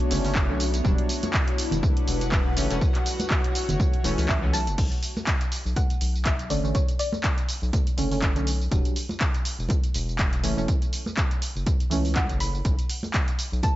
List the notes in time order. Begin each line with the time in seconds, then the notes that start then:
Already playing: A3 B3 D4 F#4 C#5
0.10 F#1 D3 A3 C#4, open hi-hat, tambourine
0.24 D3 A3 C#4, open hi-hat, tambourine
0.35 kick, clap, tambourine
0.49 B1 D3 A3 C#4
0.60 open hi-hat, tambourine
0.74 closed hi-hat, tambourine
0.84 E1 F#3 G3 D4 E4 F#4, kick, tambourine
0.98 closed hi-hat
1.09 open hi-hat, tambourine
1.23 closed hi-hat, tambourine, high conga
1.34 kick, clap, tambourine
1.48 closed hi-hat
1.52 B4
1.58 F#5, open hi-hat, tambourine
1.71 E1, closed hi-hat, tambourine, low conga
1.83 kick, tambourine, high conga
1.97 closed hi-hat
2.08 E1, open hi-hat, tambourine
2.21 closed hi-hat, tambourine
2.32 kick, clap, tambourine
2.56 F#1 E3 A3 C#4 F#4 E5, open hi-hat, tambourine
2.70 E1 E3 A3 C#4, closed hi-hat, tambourine
2.81 kick, tambourine
2.95 clap, closed hi-hat
3.05 C#5, open hi-hat, tambourine
3.20 closed hi-hat, tambourine, high conga
3.30 kick, clap, tambourine
3.44 closed hi-hat
3.55 open hi-hat, tambourine
3.69 F#1, closed hi-hat, tambourine, low conga
3.80 kick, tambourine, high conga
3.94 closed hi-hat
4.04 E1 E3 A3 C#4, open hi-hat, tambourine
4.17 C#2 E3 A3 C#4, open hi-hat, tambourine
4.29 C#2 E5, kick, clap, tambourine
4.42 E3 A3 C#4
4.53 B1 A5, open hi-hat, tambourine
4.67 F#1, closed hi-hat, tambourine
4.78 B1, kick, closed hi-hat, crash, tambourine
4.92 closed hi-hat, tambourine
5.03 open hi-hat, tambourine
5.17 tambourine, high conga
5.27 kick, clap, closed hi-hat, tambourine
5.41 closed hi-hat, tambourine
5.52 open hi-hat, tambourine
5.66 B1, tambourine
5.76 F#5, kick, closed hi-hat, tambourine, high conga
5.90 closed hi-hat, tambourine
6.01 B1, open hi-hat, tambourine
6.16 tambourine
6.25 E5, kick, clap, closed hi-hat, tambourine
6.39 closed hi-hat, tambourine
6.50 F#1 D3 A3 C#4 D5, open hi-hat, tambourine
6.63 A1 D3 A3 C#4, tambourine
6.75 C#5, kick, closed hi-hat, tambourine
6.89 closed hi-hat, tambourine
6.99 D5, open hi-hat, tambourine
7.12 tambourine, high conga
7.24 kick, clap, closed hi-hat, tambourine
7.38 closed hi-hat, tambourine
7.49 open hi-hat, tambourine
7.62 B1, tambourine
7.73 kick, closed hi-hat, tambourine, high conga
7.87 closed hi-hat, tambourine
7.97 F#1 D3 A3 C#4, open hi-hat, tambourine
8.11 D3 A3 C#4, open hi-hat, tambourine
8.22 kick, clap, closed hi-hat, tambourine
8.35 B1 D3 A3 C#4, closed hi-hat, tambourine
8.47 open hi-hat, tambourine
8.61 tambourine
8.71 E1 F#3 G3 D4, kick, closed hi-hat, tambourine
8.85 closed hi-hat, tambourine
8.96 open hi-hat, tambourine
9.09 tambourine, high conga
9.21 kick, clap, closed hi-hat, tambourine
9.34 closed hi-hat, tambourine
9.45 open hi-hat, tambourine
9.59 E1, tambourine
9.69 kick, closed hi-hat, tambourine, high conga
9.84 closed hi-hat, tambourine
9.94 E1, open hi-hat, tambourine
10.09 tambourine
10.19 kick, clap, closed hi-hat, tambourine
10.33 closed hi-hat, tambourine
10.43 F#1 E3 A3 C#4, open hi-hat, tambourine
10.57 E1 E3 A3 C#4, tambourine
10.68 kick, closed hi-hat, tambourine
10.82 closed hi-hat, tambourine
10.93 open hi-hat, tambourine
11.06 tambourine, high conga
11.17 kick, clap, closed hi-hat, tambourine
11.31 closed hi-hat, tambourine
11.42 open hi-hat, tambourine
11.56 F#1, tambourine
11.66 kick, closed hi-hat, tambourine, high conga
11.80 closed hi-hat, tambourine
11.90 C#2 E3 A3 C#4, open hi-hat, tambourine
12.05 open hi-hat, tambourine
12.16 F#5, kick, clap, closed hi-hat, tambourine
12.29 F#1, closed hi-hat, tambourine
12.40 B5, open hi-hat, tambourine
12.55 tambourine
12.65 B1, kick, closed hi-hat, tambourine
12.79 closed hi-hat, tambourine
12.90 open hi-hat, tambourine
13.03 tambourine, high conga
13.14 kick, clap, closed hi-hat, tambourine
13.28 closed hi-hat, tambourine
13.39 open hi-hat, tambourine
13.52 B1, tambourine
13.63 A5, kick, closed hi-hat, tambourine, high conga